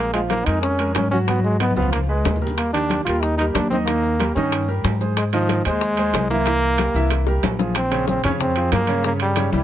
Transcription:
Already playing: upright bass A#1, trombone A#3
0.13 grand piano F3 F4 F5, trombone G#3, high conga, high timbale
0.30 trombone A#3, high bongo, high conga, high timbale, low timbale
0.46 upright bass F2, grand piano G#3 G#4 A#4, trombone D#4, high timbale
0.62 trombone C#4, high bongo, high conga
0.79 grand piano G#3 G#4 A#4, high conga, high timbale
0.95 upright bass G#2, trombone C#4, high bongo, low bongo, high conga, high timbale, low timbale
1.11 grand piano F#3 F#4 F#5, trombone C#4, high conga
1.27 grand piano F#3 F#4 F#5, trombone B3, high bongo, high conga, high timbale
1.39 high conga
1.44 trombone G#3, high bongo
1.60 trombone B3, grand piano B3 B4 D#5, high bongo, high conga, high timbale, low timbale
1.71 high conga
1.76 upright bass C#2, grand piano F3 F4 F5, trombone B3, high bongo
1.82 low conga
1.92 trombone A#3, high bongo, low conga, high timbale
2.09 trombone G#3, grand piano G#3 G#4 B4
2.25 upright bass D#2, high bongo, low bongo, low conga, high timbale, low timbale
2.36 low conga
2.42 grand piano G3 G4 A#4, high bongo
2.47 low conga
2.57 trombone A#3, high bongo, high conga, high timbale, maracas
2.73 grand piano D#3 G4 D5, trombone D4, high conga, high timbale, maracas
2.90 high bongo, high conga, high timbale, low timbale, maracas
3.05 upright bass D#2, grand piano G3 G4 A#4, trombone F4, high timbale, maracas
3.21 trombone D#4, high bongo, high conga, maracas
3.38 grand piano G3 G4 A#4, trombone D#4, high conga, high timbale, maracas
3.54 upright bass D#2, trombone D4, high bongo, low bongo, high conga, high timbale, low timbale, maracas
3.70 grand piano D#3 D#4 D#5, trombone C4, high conga, maracas
3.86 grand piano D#3 D#4 D#5, trombone A#3, high bongo, high conga, high timbale, maracas
4.03 high bongo, high conga, maracas
4.20 grand piano G3 G4 A#4, high bongo, high conga, high timbale, low timbale, maracas
4.35 upright bass G2, grand piano D#3 D#4 D#5, trombone C#4, high bongo, maracas
4.52 high bongo, high conga, high timbale, maracas
4.68 grand piano G3 G4 A#4, high conga, maracas
4.84 upright bass G#2, high bongo, low bongo, high conga, high timbale, low timbale, maracas
5.01 grand piano G#3 G#4 C5, high bongo, high conga, maracas
5.17 trombone G#3, high bongo, high conga, high timbale, maracas
5.33 grand piano D#3 D#4 D#5, trombone F3, high conga, high timbale, maracas
5.49 high bongo, high conga, high timbale, low timbale, maracas
5.65 upright bass D#2, trombone G#3, grand piano G#3 G#4 C5, high conga, high timbale, maracas
5.81 high bongo, high conga, maracas
5.97 grand piano G#3 G#4 C5, high conga, high timbale, maracas
6.13 upright bass C2, high bongo, low bongo, high conga, high timbale, low timbale, maracas
6.30 grand piano E3 E4 E5, trombone A#3, high conga, maracas
6.46 grand piano E3 E4 E5, high bongo, high conga, high timbale, maracas
6.62 high bongo, high conga, maracas
6.78 grand piano G3 G4 A#4, high bongo, high conga, high timbale, low timbale, maracas
6.94 upright bass C2, grand piano E3 E4 E5, high bongo, maracas
7.10 high bongo, high conga, high timbale, maracas
7.27 grand piano G3 G4 A#4, high bongo, high conga, maracas
7.43 upright bass A#1, low bongo, high conga, high timbale, low timbale, maracas
7.59 grand piano F3 F4 G#4, low bongo, high conga, maracas
7.75 trombone C4, high bongo, high timbale, maracas
7.91 grand piano C#3 C#4 C#5, high bongo, high conga, high timbale
8.08 trombone C4, high bongo, high conga, maracas
8.24 upright bass F2, grand piano C#3 C#4 C#5, trombone C#4, high bongo, high conga, low conga, high timbale, maracas
8.40 trombone C4, high bongo, high conga, low conga, maracas
8.56 grand piano F3 F4 G#4, high conga, high timbale
8.72 upright bass G2, trombone A#3, high bongo, low bongo, high conga, high timbale, low timbale, maracas
8.87 grand piano C#3 C#4 C#5, high bongo, high timbale, maracas
9.04 grand piano C#3 C#4 C#5, trombone A#3, high bongo, high conga, maracas
9.20 trombone G3, high bongo, high conga, high timbale
9.36 grand piano C#3 C#4 C#5, high bongo, high conga, high timbale, maracas
9.52 upright bass C2, grand piano E3 E4 G4, trombone G3, high bongo, high conga, maracas

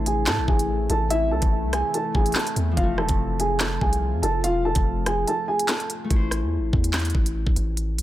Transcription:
Already playing: 808-style bass A1, ambient pad C3 E3 A3 E4, harp A3 E4 C5
0.06 grand piano G#4 G#5, closed hi-hat
0.26 808-style bass A2, grand piano A4 A5, snare, clap, closed hi-hat
0.38 808-style bass A1
0.48 808-style bass A1, grand piano G#4 G#5, kick
0.59 closed hi-hat
0.90 808-style bass A1, grand piano A4 A5, closed hi-hat
1.10 grand piano E4 E5, closed hi-hat
1.31 808-style bass C2, grand piano A4 A5
1.42 808-style bass A1, kick, closed hi-hat
1.63 808-style bass C2
1.73 grand piano G#4 G#5, cross-stick, closed hi-hat
1.94 grand piano A4 A5, closed hi-hat
2.15 808-style bass A1, grand piano G#4 G#5, kick
2.26 closed hi-hat
2.32 grand piano A5, snare, clap, closed hi-hat
2.37 grand piano A4, closed hi-hat
2.47 closed hi-hat
2.56 808-style bass E2, closed hi-hat
2.71 harp F3
2.77 808-style bass F1, ambient pad F3 F4, harp C4, grand piano F4 F5, kick, closed hi-hat
2.83 harp A3
2.98 808-style bass E1, grand piano A4 A5, cross-stick
3.09 808-style bass F1, kick, closed hi-hat
3.40 grand piano G#4 G#5, closed hi-hat
3.60 grand piano A4 A5, snare, clap, closed hi-hat
3.81 808-style bass C2, grand piano G#4 G#5, kick
3.93 closed hi-hat
4.13 808-style bass F2
4.23 808-style bass F1, grand piano A4 A5, closed hi-hat
4.44 808-style bass E1, grand piano F4 F5, closed hi-hat
4.65 grand piano A4 A5
4.75 808-style bass F1, kick, closed hi-hat
5.06 grand piano G#4 G#5, cross-stick, closed hi-hat
5.28 grand piano A4 A5, closed hi-hat
5.48 grand piano G#4 G#5
5.59 closed hi-hat
5.68 grand piano A4, snare, clap, closed hi-hat
5.80 closed hi-hat
5.90 closed hi-hat
6.04 harp A3
6.10 808-style bass A1, harp E4, kick, closed hi-hat
6.16 harp C5
6.31 cross-stick, closed hi-hat
6.42 808-style bass E2
6.58 808-style bass A1
6.73 808-style bass E2, kick
6.84 closed hi-hat
6.93 snare, clap, closed hi-hat
6.99 closed hi-hat
7.05 closed hi-hat
7.10 closed hi-hat
7.15 808-style bass A1, kick
7.26 closed hi-hat
7.47 808-style bass A1, kick
7.56 808-style bass A1, closed hi-hat
7.77 closed hi-hat
7.98 808-style bass C2, closed hi-hat

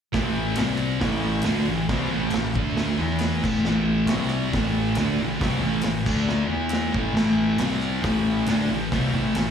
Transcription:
0.13 fingered electric bass A1, distorted electric guitar A2 E3 A3, kick, snare, open hi-hat
0.56 fingered electric bass C2, distorted electric guitar C3 G3 C4, snare, clap, open hi-hat
0.78 clap
1.00 fingered electric bass A1, distorted electric guitar A2 E3 A3, kick, snare, open hi-hat
1.43 fingered electric bass D2, distorted electric guitar D3 A3 D4, snare, clap, open hi-hat
1.67 fingered electric bass A1, distorted electric guitar A2 E3
1.89 fingered electric bass C2, distorted electric guitar C3 G3 C4, kick, snare, open hi-hat
2.09 fingered electric bass A1, distorted electric guitar A2 E3 A3
2.31 fingered electric bass A1, distorted electric guitar A2 E3, snare, clap, open hi-hat
2.55 fingered electric bass D2, distorted electric guitar D3 A3 D4, kick, clap
2.77 snare, open hi-hat
2.98 fingered electric bass E2, distorted electric guitar E3 B3 E4
3.20 snare, clap, open hi-hat
3.43 fingered electric bass A1, distorted electric guitar A2 E3 A3, kick, crash
3.63 fingered electric bass A1, distorted electric guitar A2 E3, snare
3.68 distorted electric guitar A3
4.06 fingered electric bass C2, distorted electric guitar C3 G3, snare, clap, open hi-hat
4.11 distorted electric guitar C4
4.30 clap
4.53 fingered electric bass A1, distorted electric guitar A2 E3 A3, kick, snare, open hi-hat
4.96 fingered electric bass D2, distorted electric guitar D3 A3 D4, snare, clap, open hi-hat
5.17 fingered electric bass A1, distorted electric guitar A2 E3
5.40 fingered electric bass C2, distorted electric guitar C3 G3 C4, kick, snare, open hi-hat
5.60 fingered electric bass A1, distorted electric guitar A2 E3 A3
5.82 fingered electric bass A1, distorted electric guitar A2 E3, snare, clap, open hi-hat
6.05 fingered electric bass D2, distorted electric guitar D3 A3 D4, kick, crash
6.29 snare
6.48 fingered electric bass E2, distorted electric guitar E3 B3 E4
6.70 snare, clap, open hi-hat
6.93 fingered electric bass A1, distorted electric guitar A2 E3 A3, kick
7.14 fingered electric bass A1, distorted electric guitar A2 E3 A3, snare, crash
7.59 fingered electric bass C2, distorted electric guitar C3 G3 C4, snare, clap, open hi-hat
7.82 clap
8.02 fingered electric bass A1, distorted electric guitar A2 E3 A3, kick, snare, open hi-hat
8.47 fingered electric bass D2, distorted electric guitar D3 A3 D4, snare, clap, open hi-hat
8.69 fingered electric bass A1, distorted electric guitar A2 E3
8.92 fingered electric bass C2, distorted electric guitar C3 G3 C4, kick, snare, open hi-hat
9.14 fingered electric bass A1, distorted electric guitar A2 E3 A3
9.36 fingered electric bass A1, distorted electric guitar A2 E3, snare, clap, open hi-hat

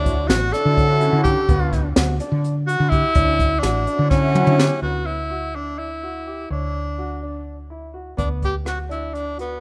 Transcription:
Already playing: fretless electric bass D2, grand piano D4, tenor saxophone D4
0.06 kick, closed hi-hat
0.28 fretless electric bass A1, tenor saxophone F#4, grand piano F#4, snare, closed hi-hat
0.52 grand piano D4, tenor saxophone A4, snare, closed hi-hat
0.65 fretless electric bass D3
0.77 kick, closed hi-hat
1.00 grand piano F#4, closed hi-hat
1.12 fretless electric bass D3
1.23 tenor saxophone G4, grand piano G4, kick, closed hi-hat
1.49 fretless electric bass D2, grand piano B3, kick, closed hi-hat
1.73 kick, snare, closed hi-hat
1.96 fretless electric bass D2, grand piano F#4, snare, closed hi-hat
2.20 grand piano D4, closed hi-hat
2.32 fretless electric bass D3
2.44 closed hi-hat
2.67 tenor saxophone F#4, grand piano F#4, closed hi-hat
2.80 fretless electric bass D3
2.89 tenor saxophone E4, grand piano G4, kick, closed hi-hat
3.15 fretless electric bass D2, grand piano D4, kick, closed hi-hat
3.40 kick, closed hi-hat
3.59 fretless electric bass A1, tenor saxophone D4, snare, closed hi-hat
3.63 grand piano F#4
3.87 grand piano D4, closed hi-hat
3.99 fretless electric bass D3
4.10 tenor saxophone C#4, kick, snare
4.35 grand piano F#4, mid tom
4.47 fretless electric bass D3, mid tom
4.58 grand piano G4, snare
4.82 fretless electric bass D2, grand piano B3, tenor saxophone F#4
5.06 tenor saxophone E4
5.30 grand piano F#4
5.55 grand piano D4, tenor saxophone D4
5.78 tenor saxophone E4
6.03 grand piano F#4
6.27 grand piano G4
6.50 fretless electric bass D2, tenor saxophone D4, grand piano C#5
6.98 grand piano F#4
7.22 grand piano D4
7.70 grand piano E4
7.94 grand piano F#4
8.17 fretless electric bass D2, grand piano B3, tenor saxophone D4, kick, closed hi-hat
8.42 tenor saxophone G4, kick, closed hi-hat
8.65 grand piano F#4, tenor saxophone F#4, cross-stick, closed hi-hat
8.89 grand piano D4, tenor saxophone E4, closed hi-hat
9.14 tenor saxophone D4, closed hi-hat
9.38 tenor saxophone B3, grand piano F#4, closed hi-hat

